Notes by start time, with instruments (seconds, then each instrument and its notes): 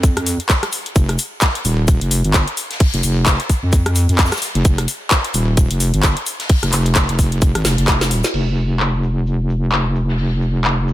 Already playing: wobble bass F2
0.03 kick, closed hi-hat, shaker
0.17 cross-stick, closed hi-hat
0.26 open hi-hat, shaker
0.40 closed hi-hat
0.49 kick, snare, clap, closed hi-hat, shaker
0.63 cross-stick, closed hi-hat
0.72 open hi-hat, shaker
0.86 closed hi-hat
0.96 wobble bass F1, kick, closed hi-hat, shaker
1.09 cross-stick, closed hi-hat
1.18 open hi-hat, shaker
1.41 kick, snare, clap, closed hi-hat, shaker
1.55 closed hi-hat
1.65 wobble bass D#1, open hi-hat, shaker
1.88 kick, closed hi-hat, shaker
2.01 wobble bass F1, closed hi-hat
2.11 open hi-hat, shaker
2.24 wobble bass G1, closed hi-hat
2.34 kick, snare, clap, closed hi-hat, shaker
2.48 closed hi-hat
2.57 open hi-hat, shaker
2.71 snare, closed hi-hat
2.80 kick, closed hi-hat, open hi-hat
2.94 wobble bass F1, closed hi-hat
3.03 wobble bass F1, open hi-hat, shaker
3.26 kick, snare, clap, closed hi-hat, shaker
3.40 closed hi-hat
3.49 kick, open hi-hat, shaker
3.63 wobble bass F2
3.73 kick, closed hi-hat, shaker
3.86 cross-stick, closed hi-hat
3.95 open hi-hat, shaker
4.09 wobble bass F2, closed hi-hat
4.18 kick, snare, clap, closed hi-hat, shaker
4.25 snare, shaker
4.32 cross-stick, snare, closed hi-hat, shaker
4.37 snare, shaker
4.42 open hi-hat, shaker
4.55 wobble bass F1, closed hi-hat
4.65 wobble bass F1, kick, closed hi-hat, shaker
4.78 cross-stick, closed hi-hat
4.88 open hi-hat, shaker
5.11 kick, snare, clap, closed hi-hat, shaker
5.24 closed hi-hat
5.34 wobble bass D#1, open hi-hat, shaker
5.57 kick, closed hi-hat, shaker
5.71 wobble bass F1, closed hi-hat
5.80 open hi-hat, shaker
5.94 wobble bass G1, closed hi-hat
6.03 kick, snare, clap, closed hi-hat, shaker
6.17 closed hi-hat
6.26 open hi-hat, shaker
6.40 snare, closed hi-hat
6.49 kick, closed hi-hat, open hi-hat
6.63 wobble bass F1, cross-stick, closed hi-hat
6.72 wobble bass F1, clap, open hi-hat, shaker
6.86 closed hi-hat
6.95 kick, snare, clap, closed hi-hat, shaker
7.09 wobble bass F1, closed hi-hat
7.19 kick, open hi-hat, shaker
7.32 closed hi-hat
7.42 kick, closed hi-hat, shaker
7.55 wobble bass G#1, cross-stick, closed hi-hat
7.65 wobble bass F1, snare, open hi-hat, shaker
7.78 wobble bass F1, closed hi-hat
7.88 kick, snare, clap, closed hi-hat, shaker
8.01 snare, closed hi-hat, shaker
8.11 open hi-hat
8.24 snare, closed hi-hat, shaker
8.34 wobble bass F1, crash, shaker
8.57 shaker
8.79 clap, shaker
9.03 shaker
9.27 shaker
9.50 shaker
9.72 clap, shaker
9.95 shaker
10.09 snare
10.18 open hi-hat
10.32 closed hi-hat
10.42 shaker
10.64 clap, shaker
10.88 shaker